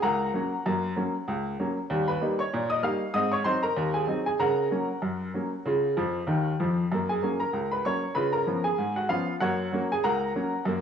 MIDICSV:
0, 0, Header, 1, 2, 480
1, 0, Start_track
1, 0, Key_signature, 6, "major"
1, 0, Tempo, 625000
1, 498, Time_signature, 2, 2, 24, 8
1, 8304, End_track
2, 0, Start_track
2, 0, Title_t, "Grand piano"
2, 0, Program_c, 0, 0
2, 19, Note_on_c, 0, 37, 75
2, 19, Note_on_c, 0, 82, 84
2, 25, Note_on_c, 0, 78, 61
2, 29, Note_on_c, 0, 70, 58
2, 222, Note_off_c, 0, 37, 0
2, 259, Note_on_c, 0, 54, 45
2, 264, Note_on_c, 0, 58, 42
2, 271, Note_on_c, 0, 61, 50
2, 390, Note_off_c, 0, 54, 0
2, 394, Note_off_c, 0, 58, 0
2, 399, Note_off_c, 0, 61, 0
2, 505, Note_on_c, 0, 42, 80
2, 519, Note_on_c, 0, 58, 47
2, 645, Note_off_c, 0, 58, 0
2, 706, Note_off_c, 0, 42, 0
2, 739, Note_on_c, 0, 58, 44
2, 740, Note_on_c, 0, 54, 52
2, 747, Note_on_c, 0, 61, 53
2, 870, Note_off_c, 0, 58, 0
2, 871, Note_off_c, 0, 54, 0
2, 876, Note_off_c, 0, 61, 0
2, 977, Note_off_c, 0, 82, 0
2, 981, Note_on_c, 0, 37, 78
2, 1183, Note_off_c, 0, 37, 0
2, 1189, Note_off_c, 0, 78, 0
2, 1191, Note_off_c, 0, 70, 0
2, 1225, Note_on_c, 0, 54, 45
2, 1227, Note_on_c, 0, 58, 44
2, 1227, Note_on_c, 0, 61, 50
2, 1355, Note_off_c, 0, 54, 0
2, 1356, Note_off_c, 0, 58, 0
2, 1356, Note_off_c, 0, 61, 0
2, 1460, Note_on_c, 0, 39, 79
2, 1474, Note_on_c, 0, 55, 53
2, 1596, Note_on_c, 0, 83, 80
2, 1601, Note_off_c, 0, 55, 0
2, 1604, Note_on_c, 0, 71, 62
2, 1661, Note_off_c, 0, 39, 0
2, 1699, Note_on_c, 0, 55, 49
2, 1703, Note_on_c, 0, 58, 47
2, 1706, Note_on_c, 0, 63, 49
2, 1787, Note_off_c, 0, 83, 0
2, 1822, Note_off_c, 0, 71, 0
2, 1830, Note_off_c, 0, 55, 0
2, 1832, Note_off_c, 0, 58, 0
2, 1834, Note_off_c, 0, 63, 0
2, 1835, Note_on_c, 0, 85, 75
2, 1846, Note_on_c, 0, 73, 56
2, 1947, Note_on_c, 0, 46, 77
2, 2026, Note_off_c, 0, 85, 0
2, 2063, Note_off_c, 0, 73, 0
2, 2072, Note_on_c, 0, 87, 91
2, 2084, Note_on_c, 0, 75, 56
2, 2146, Note_off_c, 0, 46, 0
2, 2173, Note_off_c, 0, 75, 0
2, 2173, Note_on_c, 0, 58, 48
2, 2174, Note_off_c, 0, 87, 0
2, 2175, Note_on_c, 0, 55, 50
2, 2175, Note_on_c, 0, 89, 84
2, 2179, Note_on_c, 0, 63, 48
2, 2183, Note_on_c, 0, 77, 61
2, 2306, Note_off_c, 0, 58, 0
2, 2307, Note_off_c, 0, 55, 0
2, 2310, Note_off_c, 0, 63, 0
2, 2402, Note_off_c, 0, 77, 0
2, 2403, Note_off_c, 0, 89, 0
2, 2410, Note_on_c, 0, 87, 98
2, 2412, Note_on_c, 0, 44, 83
2, 2420, Note_on_c, 0, 75, 66
2, 2427, Note_on_c, 0, 60, 49
2, 2546, Note_off_c, 0, 75, 0
2, 2546, Note_on_c, 0, 85, 73
2, 2551, Note_off_c, 0, 87, 0
2, 2556, Note_off_c, 0, 60, 0
2, 2556, Note_on_c, 0, 73, 62
2, 2617, Note_off_c, 0, 44, 0
2, 2645, Note_on_c, 0, 84, 88
2, 2646, Note_on_c, 0, 54, 44
2, 2649, Note_off_c, 0, 73, 0
2, 2651, Note_off_c, 0, 85, 0
2, 2653, Note_on_c, 0, 60, 53
2, 2654, Note_on_c, 0, 63, 60
2, 2655, Note_on_c, 0, 72, 62
2, 2781, Note_off_c, 0, 54, 0
2, 2784, Note_off_c, 0, 72, 0
2, 2786, Note_off_c, 0, 60, 0
2, 2786, Note_off_c, 0, 63, 0
2, 2786, Note_on_c, 0, 82, 83
2, 2788, Note_off_c, 0, 84, 0
2, 2792, Note_on_c, 0, 70, 60
2, 2892, Note_on_c, 0, 39, 76
2, 2981, Note_off_c, 0, 82, 0
2, 3016, Note_off_c, 0, 70, 0
2, 3025, Note_on_c, 0, 80, 67
2, 3037, Note_on_c, 0, 68, 50
2, 3097, Note_off_c, 0, 39, 0
2, 3126, Note_on_c, 0, 54, 43
2, 3134, Note_on_c, 0, 60, 42
2, 3138, Note_on_c, 0, 63, 45
2, 3221, Note_off_c, 0, 80, 0
2, 3259, Note_off_c, 0, 68, 0
2, 3261, Note_off_c, 0, 54, 0
2, 3267, Note_off_c, 0, 60, 0
2, 3270, Note_off_c, 0, 63, 0
2, 3273, Note_on_c, 0, 80, 73
2, 3279, Note_on_c, 0, 68, 53
2, 3371, Note_off_c, 0, 68, 0
2, 3374, Note_on_c, 0, 49, 78
2, 3375, Note_on_c, 0, 82, 78
2, 3376, Note_off_c, 0, 80, 0
2, 3383, Note_on_c, 0, 70, 55
2, 3383, Note_on_c, 0, 78, 56
2, 3580, Note_off_c, 0, 49, 0
2, 3613, Note_on_c, 0, 54, 41
2, 3616, Note_on_c, 0, 58, 41
2, 3622, Note_on_c, 0, 61, 49
2, 3747, Note_off_c, 0, 54, 0
2, 3749, Note_off_c, 0, 58, 0
2, 3753, Note_off_c, 0, 61, 0
2, 3854, Note_on_c, 0, 42, 66
2, 4060, Note_off_c, 0, 42, 0
2, 4101, Note_on_c, 0, 54, 42
2, 4108, Note_on_c, 0, 58, 38
2, 4109, Note_on_c, 0, 61, 42
2, 4233, Note_off_c, 0, 54, 0
2, 4238, Note_off_c, 0, 58, 0
2, 4238, Note_off_c, 0, 61, 0
2, 4343, Note_on_c, 0, 49, 72
2, 4355, Note_on_c, 0, 65, 49
2, 4483, Note_off_c, 0, 65, 0
2, 4546, Note_off_c, 0, 49, 0
2, 4584, Note_on_c, 0, 41, 66
2, 4584, Note_on_c, 0, 53, 74
2, 4763, Note_off_c, 0, 41, 0
2, 4763, Note_off_c, 0, 53, 0
2, 4789, Note_off_c, 0, 82, 0
2, 4793, Note_off_c, 0, 70, 0
2, 4793, Note_off_c, 0, 78, 0
2, 4815, Note_on_c, 0, 39, 67
2, 4817, Note_on_c, 0, 51, 68
2, 4997, Note_off_c, 0, 39, 0
2, 4999, Note_off_c, 0, 51, 0
2, 5067, Note_on_c, 0, 53, 64
2, 5069, Note_on_c, 0, 41, 62
2, 5245, Note_off_c, 0, 53, 0
2, 5246, Note_off_c, 0, 41, 0
2, 5310, Note_on_c, 0, 42, 77
2, 5330, Note_on_c, 0, 58, 45
2, 5447, Note_on_c, 0, 80, 66
2, 5454, Note_off_c, 0, 58, 0
2, 5454, Note_on_c, 0, 68, 48
2, 5511, Note_off_c, 0, 42, 0
2, 5548, Note_on_c, 0, 54, 40
2, 5551, Note_on_c, 0, 58, 46
2, 5555, Note_on_c, 0, 61, 51
2, 5672, Note_off_c, 0, 68, 0
2, 5672, Note_off_c, 0, 80, 0
2, 5679, Note_off_c, 0, 54, 0
2, 5681, Note_off_c, 0, 58, 0
2, 5681, Note_on_c, 0, 82, 63
2, 5684, Note_off_c, 0, 61, 0
2, 5691, Note_on_c, 0, 70, 49
2, 5784, Note_on_c, 0, 37, 63
2, 5910, Note_off_c, 0, 70, 0
2, 5910, Note_off_c, 0, 82, 0
2, 5925, Note_on_c, 0, 83, 69
2, 5937, Note_on_c, 0, 71, 55
2, 5988, Note_off_c, 0, 37, 0
2, 6024, Note_off_c, 0, 71, 0
2, 6025, Note_off_c, 0, 83, 0
2, 6030, Note_on_c, 0, 85, 75
2, 6035, Note_on_c, 0, 54, 39
2, 6036, Note_on_c, 0, 58, 37
2, 6037, Note_on_c, 0, 61, 43
2, 6040, Note_on_c, 0, 73, 61
2, 6164, Note_off_c, 0, 54, 0
2, 6165, Note_off_c, 0, 58, 0
2, 6166, Note_off_c, 0, 61, 0
2, 6255, Note_off_c, 0, 73, 0
2, 6255, Note_off_c, 0, 85, 0
2, 6258, Note_on_c, 0, 83, 77
2, 6261, Note_on_c, 0, 49, 73
2, 6268, Note_on_c, 0, 71, 65
2, 6279, Note_on_c, 0, 65, 49
2, 6394, Note_on_c, 0, 82, 68
2, 6395, Note_off_c, 0, 71, 0
2, 6399, Note_off_c, 0, 83, 0
2, 6401, Note_on_c, 0, 70, 58
2, 6407, Note_off_c, 0, 65, 0
2, 6466, Note_off_c, 0, 49, 0
2, 6502, Note_on_c, 0, 53, 50
2, 6508, Note_on_c, 0, 59, 44
2, 6509, Note_on_c, 0, 61, 44
2, 6624, Note_off_c, 0, 70, 0
2, 6626, Note_off_c, 0, 82, 0
2, 6634, Note_off_c, 0, 53, 0
2, 6636, Note_on_c, 0, 80, 70
2, 6639, Note_off_c, 0, 59, 0
2, 6640, Note_off_c, 0, 61, 0
2, 6642, Note_on_c, 0, 68, 57
2, 6746, Note_on_c, 0, 44, 68
2, 6864, Note_off_c, 0, 68, 0
2, 6866, Note_off_c, 0, 80, 0
2, 6883, Note_on_c, 0, 78, 62
2, 6886, Note_on_c, 0, 66, 46
2, 6948, Note_off_c, 0, 44, 0
2, 6978, Note_off_c, 0, 66, 0
2, 6981, Note_on_c, 0, 77, 69
2, 6983, Note_off_c, 0, 78, 0
2, 6984, Note_on_c, 0, 53, 45
2, 6989, Note_on_c, 0, 59, 43
2, 6989, Note_on_c, 0, 65, 50
2, 6992, Note_on_c, 0, 61, 45
2, 7115, Note_off_c, 0, 53, 0
2, 7119, Note_off_c, 0, 59, 0
2, 7121, Note_off_c, 0, 61, 0
2, 7173, Note_off_c, 0, 77, 0
2, 7209, Note_off_c, 0, 65, 0
2, 7222, Note_on_c, 0, 78, 80
2, 7226, Note_on_c, 0, 42, 70
2, 7233, Note_on_c, 0, 73, 57
2, 7234, Note_on_c, 0, 66, 59
2, 7244, Note_on_c, 0, 58, 48
2, 7370, Note_off_c, 0, 58, 0
2, 7428, Note_off_c, 0, 42, 0
2, 7467, Note_on_c, 0, 54, 49
2, 7475, Note_on_c, 0, 61, 48
2, 7478, Note_on_c, 0, 58, 55
2, 7525, Note_off_c, 0, 78, 0
2, 7579, Note_off_c, 0, 73, 0
2, 7580, Note_off_c, 0, 66, 0
2, 7598, Note_off_c, 0, 54, 0
2, 7603, Note_off_c, 0, 61, 0
2, 7605, Note_off_c, 0, 58, 0
2, 7618, Note_on_c, 0, 80, 82
2, 7623, Note_on_c, 0, 68, 56
2, 7707, Note_off_c, 0, 68, 0
2, 7709, Note_on_c, 0, 82, 84
2, 7710, Note_off_c, 0, 80, 0
2, 7711, Note_on_c, 0, 37, 66
2, 7714, Note_on_c, 0, 78, 66
2, 7716, Note_on_c, 0, 70, 59
2, 7910, Note_off_c, 0, 37, 0
2, 7953, Note_on_c, 0, 54, 40
2, 7953, Note_on_c, 0, 58, 45
2, 7956, Note_on_c, 0, 61, 50
2, 8081, Note_off_c, 0, 54, 0
2, 8081, Note_off_c, 0, 58, 0
2, 8084, Note_off_c, 0, 61, 0
2, 8181, Note_on_c, 0, 42, 82
2, 8200, Note_on_c, 0, 58, 55
2, 8304, Note_off_c, 0, 42, 0
2, 8304, Note_off_c, 0, 58, 0
2, 8304, Note_off_c, 0, 70, 0
2, 8304, Note_off_c, 0, 78, 0
2, 8304, Note_off_c, 0, 82, 0
2, 8304, End_track
0, 0, End_of_file